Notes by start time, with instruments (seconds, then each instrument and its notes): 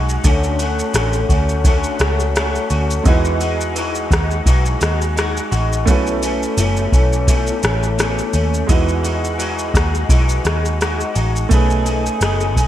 Already playing: picked electric bass B1, clean electric guitar G#3 D#4 F#4
0.09 shaker
0.24 picked electric bass D2, clean electric guitar D3 A3 C#4 F#4, kick, ride, shaker
0.44 shaker
0.59 clean electric guitar A3 C#4 F#4, ride, shaker
0.79 shaker
0.93 picked electric bass A1, clean electric guitar D3 A3 C#4 F#4, cross-stick, ride, shaker
1.13 shaker
1.29 picked electric bass D2, clean electric guitar A3 C#4 F#4, kick, ride, shaker
1.49 shaker
1.64 clean electric guitar D3 A3 C#4 F#4, kick, ride, shaker
1.84 shaker
1.99 picked electric bass C#2, clean electric guitar C#4 F#4, cross-stick, ride, shaker
2.04 clean electric guitar A3
2.20 shaker
2.36 clean electric guitar A3 C#4 F#4, cross-stick, ride, shaker
2.55 shaker
2.70 picked electric bass D2, clean electric guitar C#4 F#4, ride, shaker
2.74 clean electric guitar A3
2.91 shaker
3.03 picked electric bass E2, clean electric guitar E3 G#3 D#4, upright piano G#3 D#4 E4 F#4, kick, ride, shaker
3.08 clean electric guitar F#4, upright piano B4
3.25 shaker
3.41 clean electric guitar G#3 D#4 F#4, ride, shaker
3.61 shaker
3.75 clean electric guitar E3 G#3 D#4 F#4, ride, shaker
3.95 shaker
4.10 picked electric bass D#2, clean electric guitar G#3 D#4 F#4, kick, cross-stick, ride, shaker
4.31 shaker
4.46 picked electric bass B1, clean electric guitar E3 G#3 D#4 F#4, kick, ride, shaker
4.66 shaker
4.81 picked electric bass D#2, clean electric guitar G#3 D#4 F#4, cross-stick, ride, shaker
5.02 shaker
5.16 clean electric guitar G#3 D#4 F#4, cross-stick, ride, shaker
5.37 shaker
5.51 picked electric bass A1, clean electric guitar G#3 D#4 F#4, ride, shaker
5.73 shaker
5.85 picked electric bass B1, clean electric guitar B2 E3 A3 C#4, upright piano A3 C#4 E4 F#4, kick, ride, shaker
5.91 upright piano B4
6.07 shaker
6.22 clean electric guitar E3 A3 C#4, ride, shaker
6.43 shaker
6.57 picked electric bass F#1, clean electric guitar B2 E3 A3 C#4, ride, shaker
6.77 shaker
6.92 picked electric bass B1, clean electric guitar E3 A3 C#4, kick, ride, shaker
7.13 shaker
7.27 clean electric guitar B2 E3 A3 C#4, kick, ride, shaker
7.47 shaker
7.62 picked electric bass A1, clean electric guitar E3 A3 C#4, cross-stick, ride, shaker
7.83 shaker
7.97 clean electric guitar B2 E3 A3 C#4, cross-stick, ride, shaker
8.19 shaker
8.32 picked electric bass D#2, clean electric guitar A3 C#4, ride, shaker
8.54 shaker
8.67 picked electric bass E2, clean electric guitar E3 G#3 D#4 F#4, upright piano G#3 D#4 E4 F#4, kick, ride, shaker
8.72 upright piano B4
8.89 shaker
9.03 clean electric guitar G#3 D#4 F#4, ride, shaker
9.24 shaker
9.38 clean electric guitar E3 G#3 D#4 F#4, ride, shaker
9.59 shaker
9.74 picked electric bass D#2, clean electric guitar G#3 D#4 F#4, kick, cross-stick, ride, shaker
9.95 shaker
10.09 picked electric bass B1, clean electric guitar E3 G#3 D#4 F#4, kick, ride, shaker
10.29 shaker
10.44 picked electric bass D#2, clean electric guitar G#3 D#4 F#4, cross-stick, ride, shaker
10.65 shaker
10.81 clean electric guitar G#3 D#4 F#4, cross-stick, ride, shaker
11.00 shaker
11.14 picked electric bass A1, clean electric guitar G#3 D#4 F#4, ride, shaker
11.36 shaker
11.49 picked electric bass B1, clean electric guitar B2 A3 D#4, upright piano A3 C#4 D#4 G#4, kick, ride, shaker
11.53 clean electric guitar G#4, upright piano B4
11.70 shaker
11.85 clean electric guitar D#4 G#4, ride, shaker
11.89 clean electric guitar A3
12.06 shaker
12.21 picked electric bass F#1, clean electric guitar B2 A3 D#4 G#4, cross-stick, ride, shaker
12.40 shaker
12.56 picked electric bass B1, clean electric guitar A3 D#4 G#4, kick, ride, shaker